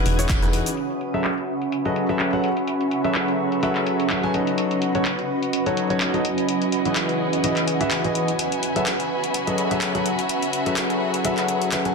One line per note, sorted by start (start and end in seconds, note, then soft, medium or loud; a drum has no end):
0.00 0.16 E3 medium
0.00 11.95 C#4 loud
0.00 0.16 D#4 medium
0.00 0.16 E4 medium
0.00 0.16 F#4 medium
0.00 11.95 F#4 medium
0.00 0.16 G#4 medium
0.00 0.16 B4 loud
0.00 11.95 B4 medium
0.00 0.73 D#6 medium
0.00 0.77 D#6 loud
0.00 0.75 F#6 medium
0.00 0.75 G#6 medium
0.06 0.63 E1 medium
0.06 open hi-hat medium
0.19 0.39 E3 medium
0.19 0.39 D#4 medium
0.19 0.39 E4 medium
0.19 0.39 F#4 medium
0.19 0.39 G#4 medium
0.19 0.39 C#5 loud
0.19 closed hi-hat medium
0.19 shaker medium
0.29 kick loud
0.29 clap loud
0.29 closed hi-hat medium
0.29 shaker medium
0.43 0.67 E3 medium
0.43 0.67 D#4 medium
0.43 0.67 E4 medium
0.43 0.67 F#4 medium
0.43 0.67 G#4 medium
0.43 0.67 B4 medium
0.43 cross-stick medium
0.43 closed hi-hat soft
0.43 shaker soft
0.53 open hi-hat medium
0.66 closed hi-hat medium
0.66 shaker medium
0.77 6.21 F#4 medium
0.77 4.54 E5 medium
0.77 6.21 F#5 medium
0.77 4.54 G#5 medium
0.77 4.54 B5 medium
0.77 closed hi-hat medium
0.90 closed hi-hat soft
1.01 closed hi-hat medium
1.14 1.28 F#3 medium
1.14 1.28 F#4 medium
1.14 1.28 G#4 medium
1.14 1.28 A4 medium
1.14 1.28 B4 medium
1.14 1.28 E5 medium
1.14 4.58 E5 medium
1.14 closed hi-hat soft
1.24 clap loud
1.24 closed hi-hat medium
1.38 closed hi-hat soft
1.62 closed hi-hat soft
1.72 closed hi-hat medium
1.85 2.06 F#3 medium
1.85 2.06 F#4 medium
1.85 2.06 G#4 medium
1.85 2.06 A4 medium
1.85 2.06 B4 medium
1.85 2.06 D#5 medium
1.85 closed hi-hat soft
1.96 closed hi-hat medium
2.09 2.30 F#3 medium
2.09 2.30 F#4 medium
2.09 2.30 G#4 medium
2.09 2.30 A4 medium
2.09 2.30 B4 medium
2.09 2.30 E5 medium
2.09 closed hi-hat soft
2.19 clap loud
2.19 closed hi-hat medium
2.33 2.47 F#3 medium
2.33 2.47 F#4 medium
2.33 2.47 G#4 medium
2.33 2.47 A4 medium
2.33 2.47 B4 medium
2.33 2.47 F#5 medium
2.33 closed hi-hat soft
2.44 closed hi-hat medium
2.57 closed hi-hat soft
2.68 closed hi-hat medium
2.81 closed hi-hat soft
2.91 closed hi-hat medium
3.04 3.60 F#3 medium
3.04 3.60 F#4 medium
3.04 3.60 G#4 medium
3.04 3.60 A4 medium
3.04 3.60 B4 medium
3.04 3.60 E5 medium
3.04 closed hi-hat soft
3.15 clap loud
3.15 closed hi-hat medium
3.28 closed hi-hat soft
3.52 closed hi-hat soft
3.63 4.08 F#3 medium
3.63 4.08 F#4 medium
3.63 4.08 G#4 medium
3.63 4.08 A4 medium
3.63 4.08 B4 medium
3.63 4.08 E5 medium
3.63 closed hi-hat medium
3.75 clap soft
3.75 closed hi-hat soft
3.87 closed hi-hat medium
4.00 closed hi-hat soft
4.10 4.21 F#3 medium
4.10 4.21 F#4 medium
4.10 4.21 G#4 medium
4.10 4.21 A4 medium
4.10 4.21 B4 medium
4.10 4.21 E5 medium
4.10 clap loud
4.10 closed hi-hat medium
4.23 4.32 F#3 medium
4.23 4.32 F#4 medium
4.23 4.32 G#4 medium
4.23 4.32 A4 medium
4.23 4.32 B4 medium
4.23 4.32 G#5 medium
4.23 closed hi-hat soft
4.34 4.92 F#3 medium
4.34 4.92 D#4 medium
4.34 4.92 F#4 medium
4.34 4.92 A4 medium
4.34 4.92 B4 medium
4.34 4.92 D#5 medium
4.34 closed hi-hat medium
4.47 closed hi-hat soft
4.58 6.23 B4 medium
4.58 8.35 D#5 medium
4.58 closed hi-hat medium
4.71 closed hi-hat soft
4.82 closed hi-hat medium
4.95 5.09 F#3 medium
4.95 5.09 D#4 medium
4.95 5.09 F#4 medium
4.95 5.09 A4 medium
4.95 5.09 B4 medium
4.95 5.09 C#5 medium
4.95 closed hi-hat soft
5.05 clap loud
5.05 closed hi-hat medium
5.19 closed hi-hat soft
5.34 8.39 D#5 medium
5.43 closed hi-hat soft
5.53 closed hi-hat medium
5.66 5.87 F#3 medium
5.66 5.87 D#4 medium
5.66 5.87 F#4 medium
5.66 5.87 A4 medium
5.66 5.87 B4 medium
5.66 5.87 C#5 medium
5.66 closed hi-hat soft
5.77 closed hi-hat medium
5.90 6.11 F#3 medium
5.90 6.11 D#4 medium
5.90 6.11 F#4 medium
5.90 6.11 A4 medium
5.90 6.11 B4 medium
5.90 6.11 C#5 medium
5.90 closed hi-hat soft
6.00 clap loud
6.00 closed hi-hat medium
6.14 6.23 F#3 medium
6.14 6.23 D#4 medium
6.14 6.23 F#4 medium
6.14 6.23 A4 medium
6.14 6.23 B4 medium
6.14 6.23 D#5 medium
6.14 closed hi-hat soft
6.24 8.39 E3 medium
6.24 8.37 E4 medium
6.24 8.37 F#5 medium
6.24 11.95 G#5 medium
6.24 closed hi-hat medium
6.38 closed hi-hat soft
6.49 closed hi-hat medium
6.62 closed hi-hat soft
6.72 closed hi-hat medium
6.85 7.41 E3 medium
6.85 7.41 E4 medium
6.85 7.41 F#4 medium
6.85 7.41 G#4 medium
6.85 7.41 B4 medium
6.85 7.41 D#5 medium
6.85 closed hi-hat soft
6.96 clap loud
6.96 closed hi-hat medium
7.09 closed hi-hat soft
7.33 closed hi-hat soft
7.44 7.78 E3 medium
7.44 7.78 E4 medium
7.44 7.78 F#4 medium
7.44 7.78 G#4 medium
7.44 7.78 B4 medium
7.44 7.78 D#5 medium
7.44 closed hi-hat medium
7.56 clap soft
7.56 closed hi-hat soft
7.68 closed hi-hat medium
7.81 8.00 E3 medium
7.81 8.01 E4 medium
7.81 8.00 F#4 medium
7.81 8.00 G#4 medium
7.81 8.01 B4 medium
7.81 8.00 E5 medium
7.81 closed hi-hat soft
7.91 clap loud
7.91 closed hi-hat medium
8.04 8.29 E3 medium
8.04 8.29 E4 medium
8.04 8.29 F#4 medium
8.04 8.29 G#4 medium
8.04 8.29 B4 medium
8.04 8.29 D#5 medium
8.04 closed hi-hat soft
8.15 closed hi-hat medium
8.28 closed hi-hat soft
8.39 11.95 F#4 medium
8.39 11.95 E5 medium
8.39 11.95 F#5 medium
8.39 11.95 B5 medium
8.39 closed hi-hat medium
8.52 closed hi-hat soft
8.60 11.95 E5 medium
8.60 closed hi-hat medium
8.76 8.90 F#3 medium
8.76 8.90 F#4 medium
8.76 8.90 G#4 medium
8.76 8.90 A4 medium
8.76 8.90 B4 medium
8.76 8.90 E5 medium
8.76 closed hi-hat soft
8.86 clap loud
8.86 closed hi-hat medium
9.00 closed hi-hat soft
9.24 closed hi-hat soft
9.34 closed hi-hat medium
9.47 9.68 F#3 medium
9.47 9.68 F#4 medium
9.47 9.68 G#4 medium
9.47 9.68 A4 medium
9.47 9.68 B4 medium
9.47 9.68 D#5 medium
9.47 closed hi-hat soft
9.58 closed hi-hat medium
9.71 9.92 F#3 medium
9.71 9.92 F#4 medium
9.71 9.92 G#4 medium
9.71 9.92 A4 medium
9.71 9.92 B4 medium
9.71 9.92 E5 medium
9.71 closed hi-hat soft
9.81 clap loud
9.81 closed hi-hat medium
9.95 10.09 F#3 medium
9.95 10.09 F#4 medium
9.95 10.09 G#4 medium
9.95 10.09 A4 medium
9.95 10.09 B4 medium
9.95 10.09 F#5 medium
9.95 closed hi-hat soft
10.06 closed hi-hat medium
10.19 closed hi-hat soft
10.29 closed hi-hat medium
10.43 closed hi-hat soft
10.53 closed hi-hat medium
10.66 11.22 F#3 medium
10.66 11.22 F#4 medium
10.66 11.22 G#4 medium
10.66 11.22 A4 medium
10.66 11.22 B4 medium
10.66 11.22 E5 medium
10.66 closed hi-hat soft
10.77 clap loud
10.77 closed hi-hat medium
10.90 closed hi-hat soft
11.14 closed hi-hat soft
11.25 11.70 F#3 medium
11.25 11.70 F#4 medium
11.25 11.70 G#4 medium
11.25 11.70 A4 medium
11.25 11.70 B4 medium
11.25 11.70 E5 medium
11.25 closed hi-hat medium
11.37 clap soft
11.37 closed hi-hat soft
11.48 closed hi-hat medium
11.62 closed hi-hat soft
11.72 11.83 F#3 medium
11.72 11.83 F#4 medium
11.72 11.83 G#4 medium
11.72 11.83 A4 medium
11.72 11.83 B4 medium
11.72 11.83 E5 medium
11.72 clap loud
11.72 closed hi-hat medium
11.85 11.94 F#3 medium
11.85 11.94 F#4 medium
11.85 11.93 G#4 medium
11.85 11.94 A4 medium
11.85 11.93 B4 medium
11.85 11.94 G#5 medium
11.85 closed hi-hat soft